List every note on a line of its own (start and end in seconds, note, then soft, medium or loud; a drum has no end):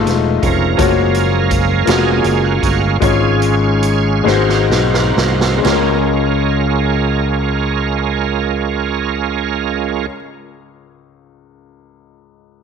0.00 0.81 G#3 medium
0.00 0.76 A3 medium
0.00 0.80 D#4 medium
0.00 0.78 F4 medium
0.00 0.81 C5 medium
0.00 0.63 D#5 medium
0.07 0.40 E1 medium
0.07 snare soft
0.07 closed hi-hat soft
0.42 0.76 F1 medium
0.42 1.83 F3 medium
0.42 1.83 C#4 medium
0.42 1.93 A#4 medium
0.42 kick medium
0.42 closed hi-hat medium
0.76 1.84 F#1 medium
0.76 2.97 G#3 soft
0.76 0.84 A3 soft
0.76 2.97 A#3 soft
0.76 1.70 F4 medium
0.76 1.71 F#4 medium
0.76 2.98 F5 soft
0.76 kick loud
0.76 closed hi-hat medium
0.80 1.73 A#3 medium
0.80 1.72 C#5 medium
1.14 closed hi-hat soft
1.51 kick medium
1.51 closed hi-hat medium
1.86 2.22 F1 medium
1.86 2.83 A#3 medium
1.86 2.98 C#4 medium
1.86 2.84 F4 medium
1.86 2.84 F#4 medium
1.86 2.46 G#4 medium
1.86 2.85 A#4 medium
1.86 snare medium
1.86 closed hi-hat medium
2.24 2.60 F#1 medium
2.24 closed hi-hat soft
2.44 2.53 F#4 soft
2.63 2.99 G1 medium
2.63 2.81 F#4 medium
2.63 kick medium
2.63 closed hi-hat soft
3.00 4.22 G#1 medium
3.00 4.22 G#2 soft
3.00 4.05 G#3 medium
3.00 3.55 G#3 soft
3.00 4.66 C#4 medium
3.00 4.06 C#4 medium
3.00 3.55 F4 soft
3.00 4.07 F4 medium
3.00 4.66 G#4 medium
3.00 4.07 C#5 medium
3.00 4.66 F5 soft
3.00 kick medium
3.00 closed hi-hat medium
3.42 closed hi-hat soft
3.83 closed hi-hat medium
4.24 4.66 G#1 medium
4.24 5.60 G#2 medium
4.24 5.41 G#3 medium
4.24 5.60 A#3 soft
4.24 5.61 C4 soft
4.24 5.42 D#4 medium
4.24 5.43 F#4 medium
4.24 5.61 F#4 soft
4.24 5.43 C5 medium
4.24 snare soft
4.50 snare soft
4.70 5.12 B1 medium
4.70 snare medium
4.94 snare medium
5.17 5.61 C2 medium
5.17 snare medium
5.41 snare medium
5.58 9.99 G#3 medium
5.62 10.07 C#2 medium
5.62 10.06 G#3 medium
5.62 10.04 C#4 medium
5.62 10.06 C#4 medium
5.62 10.06 F4 medium
5.62 10.06 A#4 medium
5.62 snare medium
5.62 splash medium
5.68 10.10 F4 soft
5.73 10.15 A#4 medium